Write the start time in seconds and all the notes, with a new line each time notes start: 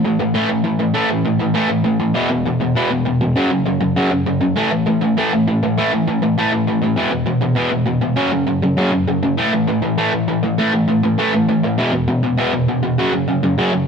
0.05 A2 E3
0.19 A2 E3
0.34 A2 E3 A3
0.49 A2 E3
0.65 A2 E3
0.80 A2 E3
0.94 A2 E3 A3
1.10 A2 E3
1.26 A2 E3
1.40 A2 E3
1.55 A2 E3 A3
1.70 A2 E3
1.85 A2 E3
2.00 A2 E3
2.14 E2 B2 E3
2.30 E2 B2
2.46 E2 B2
2.60 E2 B2
2.75 E2 B2 E3
2.90 E2 B2
3.05 E2 B2
3.21 E2 B2
3.36 F#2 C#3 F#3
3.51 F#2 C#3
3.66 F#2 C#3
3.81 F#2 C#3
3.96 F#2 C#3 F#3
4.11 F#2 C#3
4.26 F#2 C#3
4.41 F#2 C#3
4.56 A2 E3 A3
4.72 A2 E3
4.86 A2 E3
5.01 A2 E3
5.17 A2 E3 A3
5.33 A2 E3
5.48 A2 E3
5.63 A2 E3
5.78 A2 E3 A3
5.93 A2 E3
6.08 A2 E3
6.23 A2 E3
6.38 A2 E3 A3
6.52 A2 E3
6.67 A2 E3
6.82 A2 E3
6.96 E2 B2 E3
7.11 E2 B2
7.26 E2 B2
7.42 E2 B2
7.56 E2 B2 E3
7.71 E2 B2
7.87 E2 B2
8.02 E2 B2
8.16 F#2 C#3 F#3
8.32 F#2 C#3
8.47 F#2 C#3
8.62 F#2 C#3
8.77 F#2 C#3 F#3
8.92 F#2 C#3
9.07 F#2 C#3
9.23 F#2 C#3
9.37 A2 E3 A3
9.53 A2 E3
9.67 A2 E3
9.82 A2 E3
9.98 A2 E3 A3
10.12 A2 E3
10.28 A2 E3
10.43 A2 E3
10.58 A2 E3 A3
10.73 A2 E3
10.88 A2 E3
11.03 A2 E3
11.18 A2 E3 A3
11.34 A2 E3
11.49 A2 E3
11.63 A2 E3
11.78 E2 B2 E3
11.92 E2 B2
12.08 E2 B2
12.23 E2 B2
12.37 E2 B2 E3
12.54 E2 B2
12.68 E2 B2
12.83 E2 B2
12.98 F#2 C#3 F#3
13.13 F#2 C#3
13.28 F#2 C#3
13.43 F#2 C#3
13.58 F#2 C#3 F#3
13.73 F#2 C#3